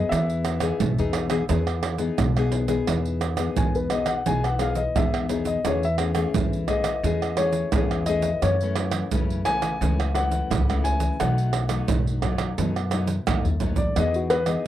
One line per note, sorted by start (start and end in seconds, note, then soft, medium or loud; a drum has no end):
0.00 0.57 B3 medium
0.00 0.57 G#4 medium
0.09 0.70 E2 loud
0.09 0.77 E3 medium
0.09 2.14 E5 medium
0.09 pandeiro medium
0.09 tamborim medium
0.09 shaker medium
0.09 surdo medium
0.30 pandeiro soft
0.30 shaker soft
0.45 pandeiro medium
0.45 tamborim medium
0.45 shaker medium
0.60 0.91 B3 medium
0.60 0.91 D#4 medium
0.60 0.92 G#4 medium
0.60 pandeiro medium
0.60 tamborim medium
0.60 shaker medium
0.80 0.95 B1 loud
0.80 1.47 B2 medium
0.80 pandeiro medium
0.80 shaker medium
0.80 surdo loud
0.98 1.43 E2 medium
0.98 1.27 B3 medium
0.98 1.27 D#4 medium
0.98 1.28 G#4 medium
0.98 pandeiro soft
0.98 shaker soft
1.13 pandeiro medium
1.13 tamborim medium
1.30 1.43 B3 medium
1.30 1.43 D#4 medium
1.30 1.43 G#4 medium
1.30 pandeiro medium
1.30 tamborim medium
1.30 shaker medium
1.49 2.08 E2 loud
1.49 2.15 E3 medium
1.49 1.96 B3 medium
1.49 1.96 G#4 medium
1.49 pandeiro medium
1.49 shaker medium
1.49 surdo medium
1.67 pandeiro soft
1.67 tamborim medium
1.67 shaker soft
1.83 pandeiro medium
1.83 tamborim medium
1.98 2.29 B3 medium
1.98 2.30 D#4 medium
1.98 2.30 G#4 medium
1.98 pandeiro medium
1.98 shaker medium
2.18 2.78 B1 medium
2.18 2.85 B2 medium
2.18 pandeiro medium
2.18 tamborim medium
2.18 shaker medium
2.18 surdo loud
2.37 2.66 B3 medium
2.37 2.66 D#4 medium
2.37 2.66 G#4 medium
2.37 pandeiro soft
2.37 tamborim medium
2.37 shaker soft
2.52 pandeiro medium
2.68 3.33 B3 medium
2.68 3.34 D#4 medium
2.68 3.34 G#4 medium
2.68 pandeiro medium
2.68 shaker medium
2.87 3.47 E2 medium
2.87 3.54 E3 medium
2.87 pandeiro medium
2.87 tamborim medium
2.87 shaker medium
2.87 surdo medium
3.05 pandeiro soft
3.05 shaker soft
3.21 pandeiro medium
3.21 tamborim medium
3.21 shaker medium
3.37 3.85 B3 medium
3.37 3.86 D#4 medium
3.37 3.86 G#4 medium
3.37 pandeiro medium
3.37 tamborim medium
3.37 shaker medium
3.57 3.87 E2 medium
3.57 4.24 B2 medium
3.57 3.74 G#5 medium
3.57 pandeiro medium
3.57 shaker medium
3.57 surdo loud
3.75 3.92 B4 medium
3.75 pandeiro soft
3.75 shaker soft
3.90 4.21 B3 medium
3.90 4.21 D#4 medium
3.90 4.21 G#4 medium
3.90 4.08 D#5 medium
3.90 pandeiro medium
3.90 tamborim medium
4.06 4.25 F#5 medium
4.06 pandeiro medium
4.06 tamborim medium
4.06 shaker medium
4.26 4.86 B1 medium
4.26 4.93 E3 medium
4.26 4.47 B3 medium
4.26 4.47 D#4 medium
4.26 4.48 G#4 medium
4.26 4.44 G#5 medium
4.26 pandeiro medium
4.26 shaker medium
4.26 surdo medium
4.44 4.62 F#5 medium
4.44 pandeiro soft
4.44 tamborim medium
4.44 shaker soft
4.59 4.81 B3 medium
4.59 4.81 D#4 soft
4.59 4.81 G#4 medium
4.59 4.78 F5 medium
4.59 pandeiro medium
4.59 tamborim medium
4.59 shaker medium
4.75 4.95 D#5 medium
4.75 pandeiro medium
4.75 shaker medium
4.96 5.55 E2 medium
4.96 5.62 B2 medium
4.96 5.25 B3 medium
4.96 5.25 D#4 medium
4.96 5.26 G#4 medium
4.96 5.45 E5 medium
4.96 pandeiro medium
4.96 tamborim medium
4.96 shaker medium
4.96 surdo loud
5.14 pandeiro soft
5.14 tamborim medium
5.14 shaker soft
5.29 5.59 B3 medium
5.29 5.59 D#4 medium
5.29 5.59 G#4 medium
5.29 pandeiro medium
5.29 shaker medium
5.45 5.64 D#5 medium
5.45 pandeiro medium
5.45 shaker medium
5.65 6.24 E2 medium
5.65 6.31 E3 medium
5.65 5.86 A3 medium
5.65 5.86 C#4 medium
5.65 5.86 G#4 medium
5.65 5.83 C#5 medium
5.65 pandeiro medium
5.65 tamborim medium
5.65 shaker medium
5.65 surdo medium
5.83 5.95 E5 medium
5.83 pandeiro soft
5.83 shaker soft
5.98 6.11 A3 medium
5.98 6.11 C#4 medium
5.98 6.12 G#4 medium
5.98 pandeiro medium
5.98 tamborim medium
6.15 6.63 A3 medium
6.15 6.63 C#4 medium
6.15 6.63 G#4 medium
6.15 pandeiro medium
6.15 tamborim medium
6.15 shaker medium
6.34 6.64 E2 medium
6.34 7.01 E3 medium
6.34 pandeiro medium
6.34 shaker medium
6.34 surdo loud
6.53 pandeiro soft
6.53 shaker soft
6.68 6.89 A3 medium
6.68 6.90 C#4 medium
6.68 6.90 G#4 medium
6.68 7.34 D#5 medium
6.68 pandeiro medium
6.68 tamborim medium
6.68 surdo medium
6.84 pandeiro medium
6.84 tamborim medium
6.84 shaker medium
7.03 7.63 E2 medium
7.03 7.70 E3 medium
7.03 7.34 A3 medium
7.03 7.34 C#4 medium
7.03 7.34 G#4 medium
7.03 pandeiro medium
7.03 shaker medium
7.03 surdo medium
7.22 pandeiro soft
7.22 tamborim medium
7.22 shaker soft
7.37 7.68 A3 medium
7.37 7.68 C#4 medium
7.37 7.68 G#4 medium
7.37 8.03 C#5 medium
7.37 pandeiro medium
7.37 tamborim medium
7.52 pandeiro medium
7.52 shaker medium
7.72 8.32 E2 medium
7.72 8.40 E3 medium
7.72 8.03 A3 medium
7.72 8.03 C#4 medium
7.72 8.04 G#4 medium
7.72 pandeiro medium
7.72 tamborim medium
7.72 shaker medium
7.72 surdo loud
7.91 pandeiro soft
7.91 tamborim medium
7.91 shaker soft
8.06 8.28 A3 medium
8.06 8.29 C#4 medium
8.06 8.29 G#4 medium
8.06 8.41 D#5 medium
8.06 pandeiro medium
8.06 shaker medium
8.22 pandeiro medium
8.22 shaker medium
8.42 9.01 F#2 medium
8.42 9.09 F#2 medium
8.42 8.55 E3 medium
8.42 8.55 A3 medium
8.42 8.56 C#4 medium
8.42 9.43 C#5 medium
8.42 pandeiro medium
8.42 tamborim medium
8.42 shaker medium
8.42 surdo medium
8.61 9.08 E3 medium
8.61 9.08 A3 medium
8.61 9.08 C#4 medium
8.61 pandeiro soft
8.61 shaker soft
8.76 pandeiro medium
8.76 tamborim medium
8.91 pandeiro medium
8.91 tamborim medium
8.91 shaker medium
9.11 9.41 F#2 medium
9.11 9.79 C#3 medium
9.11 9.42 E3 medium
9.11 9.42 A3 medium
9.11 9.42 C#4 medium
9.11 pandeiro medium
9.11 shaker medium
9.11 surdo loud
9.30 pandeiro soft
9.30 shaker soft
9.45 9.76 E3 medium
9.45 9.76 A3 medium
9.45 9.76 C#4 medium
9.45 10.11 G#5 loud
9.45 pandeiro medium
9.45 tamborim medium
9.45 shaker medium
9.62 pandeiro medium
9.62 tamborim medium
9.62 shaker medium
9.81 10.40 C#2 medium
9.81 10.48 F#2 medium
9.81 10.11 E3 medium
9.81 10.11 A3 medium
9.81 10.11 C#4 medium
9.81 pandeiro medium
9.81 shaker medium
9.81 surdo medium
10.00 pandeiro soft
10.00 tamborim medium
10.00 shaker soft
10.15 10.62 E3 medium
10.15 10.62 A3 medium
10.15 10.62 C#4 medium
10.15 10.81 F#5 medium
10.15 pandeiro medium
10.15 tamborim medium
10.15 shaker medium
10.31 pandeiro medium
10.31 shaker medium
10.50 11.09 C#2 medium
10.50 11.17 C#3 medium
10.50 pandeiro medium
10.50 tamborim medium
10.50 shaker medium
10.50 surdo loud
10.69 11.18 E3 medium
10.69 11.18 A3 medium
10.69 11.18 C#4 medium
10.69 pandeiro soft
10.69 tamborim medium
10.69 shaker soft
10.84 11.18 G#5 medium
10.84 pandeiro medium
10.84 shaker medium
11.00 pandeiro medium
11.00 shaker medium
11.20 11.79 B1 loud
11.20 11.86 B2 medium
11.20 11.67 F#3 medium
11.20 11.67 A3 medium
11.20 11.67 D#4 medium
11.20 12.20 F#5 medium
11.20 pandeiro medium
11.20 tamborim medium
11.20 shaker medium
11.20 surdo medium
11.38 pandeiro soft
11.38 shaker soft
11.53 pandeiro medium
11.53 tamborim medium
11.53 shaker medium
11.69 12.17 F#3 medium
11.69 12.18 A3 medium
11.69 12.18 D#4 medium
11.69 pandeiro medium
11.69 tamborim medium
11.69 shaker medium
11.88 12.19 B1 medium
11.88 12.55 F#2 medium
11.88 pandeiro medium
11.88 shaker medium
11.88 surdo loud
12.07 pandeiro soft
12.07 shaker soft
12.22 12.53 F#3 medium
12.22 12.53 A3 medium
12.22 12.53 D#4 medium
12.22 pandeiro medium
12.22 tamborim medium
12.22 surdo medium
12.38 pandeiro medium
12.38 tamborim medium
12.38 shaker medium
12.58 13.17 F#2 medium
12.58 13.25 B2 medium
12.58 12.79 F#3 medium
12.58 12.80 A3 soft
12.58 12.80 D#4 medium
12.58 pandeiro medium
12.58 shaker medium
12.58 surdo medium
12.76 pandeiro soft
12.76 tamborim medium
12.76 shaker soft
12.91 13.13 F#3 medium
12.91 13.14 A3 medium
12.91 13.14 D#4 medium
12.91 pandeiro medium
12.91 tamborim medium
12.91 shaker medium
13.07 pandeiro medium
13.07 shaker medium
13.27 13.87 D#2 medium
13.27 13.94 F#2 medium
13.27 13.49 F#3 medium
13.27 13.49 A3 medium
13.27 13.49 D#4 medium
13.27 pandeiro medium
13.27 tamborim loud
13.27 shaker medium
13.27 surdo loud
13.45 surdo medium
13.45 pandeiro soft
13.45 shaker soft
13.60 13.82 F#3 medium
13.60 13.83 A3 medium
13.60 13.83 D#4 medium
13.60 pandeiro medium
13.60 shaker medium
13.60 surdo medium
13.76 13.96 D5 medium
13.76 pandeiro medium
13.76 shaker medium
13.76 surdo loud
13.96 14.56 E2 medium
13.96 14.63 E3 medium
13.96 14.27 B3 medium
13.96 14.27 D#4 medium
13.96 14.27 G#4 medium
13.96 14.14 D#5 medium
13.96 pandeiro medium
13.96 tamborim medium
13.96 shaker medium
13.96 surdo medium
14.14 14.32 F#4 medium
14.14 pandeiro soft
14.14 shaker soft
14.30 14.42 B3 medium
14.30 14.42 D#4 medium
14.30 14.42 G#4 medium
14.30 14.48 B4 medium
14.30 pandeiro medium
14.30 tamborim medium
14.46 14.67 B3 medium
14.46 14.67 D#4 medium
14.46 14.67 G#4 medium
14.46 14.65 D#5 medium
14.46 pandeiro medium
14.46 tamborim medium
14.46 shaker medium